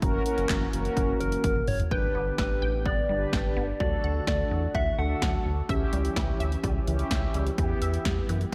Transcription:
0.02 analog synth bass F#1, analog synth pad E3 A#3 F#4, analog polysynth C#4 F#4 A#4, kick, closed hi-hat
0.26 analog polysynth C#4 F#4 A#4, closed hi-hat
0.38 analog synth bass F#1, closed hi-hat
0.49 analog synth bass F#1, kick, snare, clap, closed hi-hat
0.73 analog synth bass F#1, analog polysynth C#4 F#4 A#4, closed hi-hat
0.85 closed hi-hat
0.97 analog synth bass F#1, kick, closed hi-hat
1.20 analog synth bass F#1, soft synth lead A#4, closed hi-hat
1.32 closed hi-hat
1.44 analog synth bass F#1, soft synth lead A#4, kick, closed hi-hat, high tom
1.56 mid tom
1.67 analog synth bass F#1, soft synth lead C#5, mid tom, open hi-hat
1.80 closed hi-hat, floor tom
1.91 analog synth bass G1, analog synth pad D3 B3 G4, analog polysynth D4 G4 B4, soft synth lead B4, synth arpeggio sound G5, kick
2.15 analog synth bass G1, synth arpeggio sound B3
2.38 analog synth bass G1, synth arpeggio sound G3, soft synth lead B4, kick, snare
2.62 analog synth bass A1, synth arpeggio sound G5
2.86 analog synth bass G1, synth arpeggio sound B3, soft synth lead D5, kick
3.09 analog synth bass G1, synth arpeggio sound G3, analog polysynth D4 G4 B4
3.33 analog synth bass G1, synth arpeggio sound G5, kick, snare
3.57 analog synth bass G1, synth arpeggio sound B3
3.80 analog synth bass D2, synth arpeggio sound F#3, analog synth pad A3 F#4, analog polysynth D4 F#4 A4, soft synth lead D5, kick
4.04 analog synth bass D2, synth arpeggio sound F#5
4.27 analog synth bass D2, synth arpeggio sound A3, soft synth lead D5, kick, snare
4.51 analog synth bass E2, synth arpeggio sound F#3
4.75 analog synth bass D2, soft synth lead E5, synth arpeggio sound F#5, kick
4.98 analog synth bass D2, synth arpeggio sound A3, analog polysynth D4 F#4 A4, soft synth lead F#5
5.22 analog synth bass D2, synth arpeggio sound F#3, kick, snare
5.46 analog synth bass D2
5.69 analog synth bass C#2, analog synth pad E3 C#4 G4, analog polysynth C#4 E4 G4, synth arpeggio sound E5, kick, closed hi-hat
5.93 analog synth bass C#2, synth arpeggio sound G3, closed hi-hat
6.05 closed hi-hat
6.16 analog synth bass C#2, synth arpeggio sound E3, kick, snare, closed hi-hat
6.40 analog synth bass D2, synth arpeggio sound E5, closed hi-hat
6.52 closed hi-hat
6.64 analog synth bass C#2, synth arpeggio sound G3, kick, closed hi-hat
6.87 analog synth bass C#2, synth arpeggio sound E3, analog polysynth C#4 E4 G4, closed hi-hat
6.99 closed hi-hat
7.11 analog synth bass C#2, synth arpeggio sound E5, kick, snare, closed hi-hat
7.34 analog synth bass C#2, synth arpeggio sound G3, closed hi-hat
7.47 closed hi-hat
7.58 analog synth bass E2, synth arpeggio sound E3, analog polysynth B3 E4 G4, analog synth pad B3, kick, closed hi-hat
7.82 analog synth bass E2, synth arpeggio sound E5, closed hi-hat
7.94 closed hi-hat
8.05 analog synth bass E2, synth arpeggio sound G3, kick, snare, closed hi-hat
8.29 analog synth bass F#2, synth arpeggio sound E3, closed hi-hat
8.41 closed hi-hat

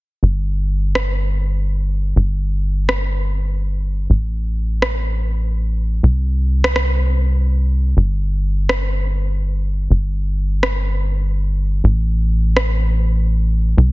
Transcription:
0.23 analog synth bass G1
0.95 cross-stick
2.16 analog synth bass G1
2.89 cross-stick
4.10 analog synth bass A1
4.82 cross-stick
6.03 analog synth bass C2
6.64 cross-stick
6.76 cross-stick
7.97 analog synth bass G1
8.69 cross-stick
9.90 analog synth bass G1
10.63 cross-stick
11.84 analog synth bass A1
12.57 cross-stick
13.77 analog synth bass C2

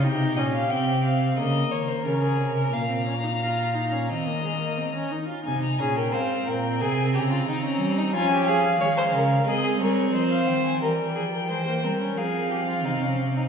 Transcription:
0.03 cello C3, viola D#4, violin G4 G5
0.37 cello A#2, viola C#4, violin D#5
0.53 violin F5
0.70 cello C3, viola C4, violin G5
1.03 violin F5
1.37 cello C#3, viola A#3, violin A#4 D#5
1.71 cello D#3, violin C#5
1.88 violin C5
2.04 cello C#3, viola C#4, violin A#4
2.22 violin G#4
2.39 cello C3
2.56 violin A#4
2.72 cello A#2, viola A#3, violin F5 A#5
2.89 viola C4
3.06 viola C#4
3.23 viola D#4
3.40 viola F4
3.74 viola D#4
3.91 viola C#4
4.09 cello D#3, viola C4, violin D#5 A#5
4.26 viola A#3
4.43 viola G#3
4.59 viola A#3
4.77 viola C4
4.94 viola C#4
5.11 viola D#4
5.28 viola F4
5.44 cello C3, viola D#4, violin G#5
5.62 violin A#5
5.78 cello A#2, viola C#4, violin G#4 G#5
5.96 violin A#4 G5
6.12 cello G#2, viola C4, violin C5 F5
6.46 cello A#2, violin A#4 G5
6.80 cello C3, violin G#4 G#5
7.14 cello C#3, violin G4 A#5
7.31 violin F4
7.47 cello D#3, violin D#4
7.65 violin C#4
7.80 cello G3
7.97 violin D#4
8.13 cello F3, viola C#4, violin F4 G#5
8.31 violin G4
8.46 violin G#4 F5
8.80 cello D#3, viola G#3, violin C#5
8.97 violin C5
9.13 cello C#3, violin A#4
9.46 cello G#3, viola C4, violin G#4 D#5
9.64 violin G#4
9.80 cello G3, violin A#4 C#5
10.14 cello F3, violin C5 D#5
10.31 violin F5
10.47 cello D#3, violin G5
10.65 violin G#5
10.81 cello E3, viola G3, violin A#4 G5
11.15 cello F3, violin G#4
11.33 violin A#4
11.49 cello E3, viola G#3, violin C5
11.66 viola A#3
11.83 cello G3, viola C4, violin A#4
12.00 viola C#4
12.17 cello F3, viola C4, violin G#4 F5
12.51 violin G4
12.68 violin F4
12.84 cello C3, violin D#4
13.01 violin C#4
13.36 violin D#4

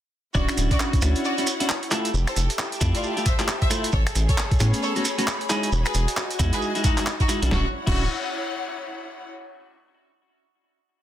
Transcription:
0.35 analog synth bass D1, clean electric guitar C#4 D4 E4 F#4, string section E4, violin section F#4 D5, kick, shekere
0.48 finger snap, closed hi-hat, shekere
0.57 analog synth bass D1, closed hi-hat, shekere
0.71 violin section F#4 D5, kick, closed hi-hat, shekere
0.79 clap, shekere
0.86 string section C#5
0.93 kick, closed hi-hat, shekere
1.02 analog synth bass D2, clean electric guitar C#4 D4 E4 F#4, finger snap, closed hi-hat, shekere
1.06 string section F#5
1.15 closed hi-hat, shekere
1.24 violin section F#4 D5, shekere
1.37 clean electric guitar C#4 D4 E4 F#4, closed hi-hat, shekere
1.47 closed hi-hat, shekere
1.60 clean electric guitar C#4 D4 E4 F#4, closed hi-hat, shekere
1.69 clap, shekere
1.83 closed hi-hat
1.91 clean electric guitar A3 E4 F4 A4, string section G4, finger snap, clap, closed hi-hat, shekere
2.05 closed hi-hat, shekere
2.14 analog synth bass F1, shekere
2.27 violin section A4 C5, finger snap, closed hi-hat, shekere
2.36 analog synth bass F1, closed hi-hat, shekere
2.44 string section E5
2.50 closed hi-hat, shekere
2.59 string section A5, clap, shekere
2.72 closed hi-hat, shekere
2.81 analog synth bass F2, clean electric guitar A3 E4 F4 G4, kick, closed hi-hat, shekere
2.95 violin section F4 D5, closed hi-hat, shekere
3.03 shekere
3.16 clean electric guitar A3 E4 F4 G4, closed hi-hat, shekere
3.26 violin section C5 E5, kick, closed hi-hat, shekere
3.39 clean electric guitar A3 E4 F4 G4, clap, closed hi-hat, shekere
3.48 clap, shekere
3.62 violin section C5 E5, kick, closed hi-hat
3.70 clean electric guitar A3 E4 F4 A4, finger snap, closed hi-hat, shekere
3.84 closed hi-hat, shekere
3.92 analog synth bass A1, string section G#4, violin section A4 C#5, kick, shekere
4.07 finger snap, closed hi-hat, shekere
4.15 analog synth bass A1, closed hi-hat, shekere
4.24 string section C#5
4.29 violin section A4 C#5, kick, closed hi-hat, shekere
4.38 clap, shekere
4.51 kick, closed hi-hat, shekere
4.60 analog synth bass A2, clean electric guitar A3 B3 C#4 G#4, finger snap, closed hi-hat, shekere
4.64 string section B5
4.73 closed hi-hat, shekere
4.82 violin section A4 C#5, shekere
4.95 clean electric guitar A3 B3 C#4 F#4, closed hi-hat, shekere
5.04 closed hi-hat, shekere
5.18 clean electric guitar A3 B3 C#4 F#4, closed hi-hat, shekere
5.27 clap, shekere
5.41 closed hi-hat
5.49 clean electric guitar G#3 D#4 E4 G#4, string section F#4, finger snap, clap, closed hi-hat, shekere
5.63 closed hi-hat, shekere
5.72 analog synth bass E1, shekere
5.83 violin section G#4 B4, string section G#5, finger snap, closed hi-hat, shekere
5.94 analog synth bass E1, closed hi-hat, shekere
6.08 string section D#5, closed hi-hat, shekere
6.17 clap, shekere
6.31 closed hi-hat, shekere
6.39 analog synth bass E2, clean electric guitar G#3 D#4 E4 F#4, kick, closed hi-hat, shekere
6.53 violin section G#4 B4, closed hi-hat, shekere
6.62 shekere
6.75 clean electric guitar G#3 D#4 E4 F#4, closed hi-hat, shekere
6.84 clean electric guitar G#3 D#4 E4 F#4, violin section D#4 F#4, kick, closed hi-hat, shekere
6.97 clean electric guitar G#3 D#4 E4 F#4, clap, closed hi-hat, shekere
7.06 clap, shekere
7.20 violin section D#4 F#4, kick, closed hi-hat, shekere
7.28 clean electric guitar G#3 D#4 E4 F#4, finger snap, closed hi-hat, shekere
7.42 analog synth bass B1, clean electric guitar C#4 D4 E4 F#4, closed hi-hat, shekere
7.51 analog synth bass D1, clean electric guitar C#4 D4 E4 F#4, string section E4, violin section F#4, kick, snare
7.59 string section C#5
7.67 string section F#5
7.87 analog synth bass D1, clean electric guitar C#4 D4 E4 F#4, violin section F#4, kick, crash

